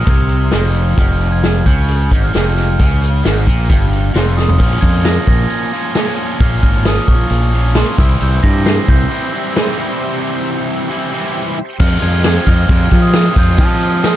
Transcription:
0.07 fingered electric bass C2, overdriven electric guitar C3, glockenspiel G#6, kick, closed hi-hat
0.29 closed hi-hat
0.51 fingered electric bass F1, overdriven electric guitar F2, snare, closed hi-hat
0.74 closed hi-hat
0.98 fingered electric bass F1, overdriven electric guitar F2, glockenspiel F6, kick, closed hi-hat
1.21 closed hi-hat
1.32 glockenspiel G#6
1.44 snare, closed hi-hat
1.66 fingered electric bass C#2, overdriven electric guitar C#3, glockenspiel G6, kick, closed hi-hat
1.88 closed hi-hat
2.11 fingered electric bass G#1, overdriven electric guitar G#2, kick, closed hi-hat
2.24 glockenspiel F6
2.34 fingered electric bass F1, overdriven electric guitar F2, glockenspiel F6, snare, closed hi-hat
2.57 glockenspiel F6, snare, closed hi-hat
2.79 fingered electric bass C#2, overdriven electric guitar C#3, kick, closed hi-hat
3.03 closed hi-hat
3.23 fingered electric bass G#1, overdriven electric guitar G#2, snare, closed hi-hat
3.46 fingered electric bass A#1, overdriven electric guitar A#2, kick, closed hi-hat
3.69 fingered electric bass G1, overdriven electric guitar G2, kick, closed hi-hat
3.93 closed hi-hat
4.14 fingered electric bass F1, overdriven electric guitar F2, glockenspiel C6, snare, closed hi-hat
4.37 glockenspiel D#6, snare
4.49 floor tom
4.58 fingered electric bass A#1, overdriven electric guitar A#2 F3 A#3 C#4 F4, glockenspiel F6, kick, crash
4.81 fingered electric bass F2, glockenspiel G#6, kick, open hi-hat
5.05 glockenspiel A#6, snare, open hi-hat
5.27 fingered electric bass A#1, glockenspiel A#6, kick, open hi-hat
5.50 glockenspiel G#6, open hi-hat
5.73 overdriven electric guitar A#2 F3 A#3 C#4 F4, open hi-hat
5.95 overdriven electric guitar A#2 F3 A#3 C#4 F4, snare, open hi-hat
6.07 snare
6.18 open hi-hat
6.40 fingered electric bass A#1, overdriven electric guitar A#2 F3 A#3 C#4 F4, glockenspiel F6, kick, open hi-hat
6.63 fingered electric bass G#1, glockenspiel F6, kick, open hi-hat
6.85 glockenspiel D#6, snare, open hi-hat
7.08 fingered electric bass A#1, glockenspiel C#6, kick, open hi-hat
7.30 fingered electric bass A#1, open hi-hat
7.53 overdriven electric guitar A#2 F3 A#3 C#4 F4, open hi-hat
7.75 overdriven electric guitar A#2 F3 A#3 C#4 F4, glockenspiel C6, snare, open hi-hat
7.98 fingered electric bass C2, overdriven electric guitar C3 E3 G3 C4 E4, glockenspiel E6, kick, open hi-hat
8.21 fingered electric bass C2, analog synth pad G4 C5 E5 C6, glockenspiel G6, open hi-hat
8.43 fingered electric bass G2, glockenspiel A#6, kick, open hi-hat
8.66 glockenspiel C7, snare, open hi-hat
8.88 fingered electric bass C2, glockenspiel G6, kick, open hi-hat
9.11 overdriven electric guitar C3 E3 G3 C4 E4, open hi-hat
9.33 overdriven electric guitar C3 E3 G3 C4 E4, open hi-hat
9.56 snare, open hi-hat
9.67 snare
9.77 overdriven electric guitar C3 E3 G3 C4 E4, open hi-hat
10.90 overdriven electric guitar C3 E3 G3 C4 E4
11.14 overdriven electric guitar C3 E3 G3 C4 E4
11.80 overdriven electric guitar F2 C3 F3 G#3 C4 F4, fingered electric bass F2, analog synth pad F4 C5 D#5 G#5, glockenspiel F6, kick, crash, tambourine
12.02 fingered electric bass F2, glockenspiel G#6, tambourine, crash
12.24 overdriven electric guitar F2 C3 F3 G#3 C4 F4, glockenspiel G#6, snare, tambourine, crash
12.46 overdriven electric guitar F2 C3 F3 G#3 C4 F4, fingered electric bass F2, glockenspiel F6, kick, tambourine, crash
12.59 tambourine
12.69 fingered electric bass F2, overdriven electric guitar F2 C3 F3 G#3 C4 F4, kick, crash
12.81 tambourine
12.91 fingered electric bass F3, kick, tambourine, crash
13.02 glockenspiel D#6
13.13 overdriven electric guitar F2 C3 F3 G#3 C4 F4, snare, tambourine, crash
13.36 fingered electric bass F2, overdriven electric guitar F2 C3 F3 G#3 C4 F4, glockenspiel G6, kick, tambourine, crash
13.58 overdriven electric guitar F2 C3 F3 G#3 C4 F4, fingered electric bass F3, glockenspiel F6, kick, tambourine, crash
13.70 tambourine
13.81 glockenspiel F6, tambourine, crash
14.04 overdriven electric guitar F2 C3 F3 G#3 C4 F4, glockenspiel D#6, snare, tambourine, crash

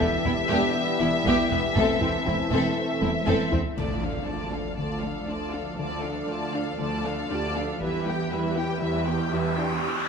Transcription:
Already playing: trombone section E3 G3, analog synth pad E3 B3 G4 E5, french horn section B3 E4, violin section E5
0.00 synth arpeggio sound B3, viola section B3, felt piano A4, taiko low
0.24 double bass section E1, cello section E2, synth arpeggio sound B3, viola section B3, violin section E4, taiko low
0.50 double bass section E1, cello section E2, synth arpeggio sound E3, viola section B3, felt piano D4 D5, violin section G4
1.00 double bass section E1, cello section E2, viola section B3, violin section E4, synth arpeggio sound E4
1.25 double bass section E1, cello section E2, synth arpeggio sound E3, viola section B3, violin section G4, taiko
1.50 double bass section E1, cello section E2, violin section B3, synth arpeggio sound B3, viola section B3, taiko low
1.75 double bass section E1, cello section E2, synth arpeggio sound A3, trombone section A3, french horn section C4, analog synth pad C4 A4, viola section C4, violin section A4, taiko
2.01 double bass section E1, cello section E2, violin section C4, viola section C4, synth arpeggio sound E4, taiko low
2.26 double bass section E1, cello section E2, viola section C4, synth arpeggio sound E4, violin section E4, taiko low
2.51 double bass section E1, cello section E2, synth arpeggio sound A3, viola section C4, violin section A4
3.01 double bass section E1, cello section E2, viola section C4, violin section E4, synth arpeggio sound A4, taiko high
3.26 double bass section E1, cello section E2, synth arpeggio sound A3, viola section C4, violin section A4, taiko low-mid
3.52 double bass section E1, cello section E2, violin section C4, viola section C4, synth arpeggio sound E4, taiko low
3.78 cello section D2, synth arpeggio sound D3, analog synth pad F3 D4 A4 D5, viola section A3 F4, felt piano A4, violin section D5 A5, taiko, impact
4.03 synth arpeggio sound F3, viola section D4, violin section A4 F5
4.27 cello section D2, viola section A3 F4, violin section D5 A5
4.52 synth arpeggio sound D4, viola section D4, violin section A4 F5, taiko
4.77 cello section D2, synth arpeggio sound D3, viola section A3 F4, violin section D5 A5
5.01 synth arpeggio sound A3, viola section D4, violin section A4 F5
5.28 cello section D2, viola section A3 F4, synth arpeggio sound D4, violin section D5 A5
5.53 synth arpeggio sound D4, viola section D4, violin section A4 F5
5.79 cello section D2, synth arpeggio sound D3, viola section A3 F4, violin section D5 A5
6.04 synth arpeggio sound F3, viola section D4, violin section A4 F5
6.29 cello section D2, viola section A3 F4, violin section D5 A5
6.55 synth arpeggio sound D4, viola section D4, violin section A4 F5
6.79 cello section D2, synth arpeggio sound D3, viola section A3 F4, violin section D5 A5
7.06 synth arpeggio sound A3, viola section D4, violin section A4 F5
7.30 cello section D2, viola section A3 F4, synth arpeggio sound D4, felt piano G4, violin section D5 A5
7.56 synth arpeggio sound D4, viola section D4, violin section A4 F5
7.79 cello section E2, analog synth pad E3 E4 G4 B4, synth arpeggio sound E3, viola section G3 E4, violin section B4 E5, taiko, riser
8.06 synth arpeggio sound G3, viola section B3 G4, violin section G4 G5
8.31 cello section E2, viola section G3 E4, violin section B4 E5
8.57 viola section B3 G4, synth arpeggio sound E4, violin section G4 G5
8.82 cello section E2, synth arpeggio sound E3, viola section G3 E4, violin section B4 E5
9.07 viola section B3 G4, synth arpeggio sound B3, violin section G4 G5
9.32 cello section E2, viola section G3 E4, synth arpeggio sound E4, violin section B4 E5
9.57 viola section B3 G4, felt piano D4 D5, synth arpeggio sound E4, violin section G4 G5

